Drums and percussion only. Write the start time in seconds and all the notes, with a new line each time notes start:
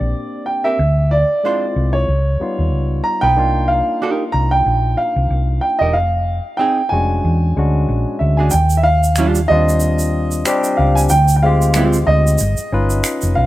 8.50 shaker
8.70 shaker
9.03 shaker
9.16 finger snap, shaker
9.35 shaker
9.69 shaker
9.80 shaker
9.99 shaker
10.31 shaker
10.46 finger snap, shaker
10.64 shaker
10.97 shaker
11.09 shaker
11.28 shaker
11.62 shaker
11.74 finger snap, shaker
11.93 shaker
12.27 shaker
12.38 shaker
12.57 shaker
12.90 shaker
13.04 finger snap, shaker
13.21 shaker